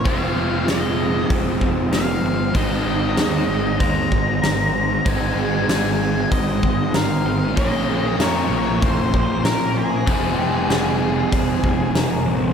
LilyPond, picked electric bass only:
\new Staff \with { instrumentName = "Picked electric bass" } { \clef bass \time 4/4 \key aes \major \tempo 4 = 96 f,,8 f,,8 f,,4 f,,8 f,,8 f,,8 g,,8 | aes,,8 aes,,8 ees,8 aes,,8 ees,8 aes,,8 aes,,4 | aes,,8 aes,,8 aes,,4 aes,,8 aes,,8 aes,,8 aes,,8 | bes,,8 bes,,8 f,8 bes,,8 f,,8 bes,,8 bes,,4 |
f,,8 f,,8 f,,4 f,,8 f,,8 f,,8 a,,8 | }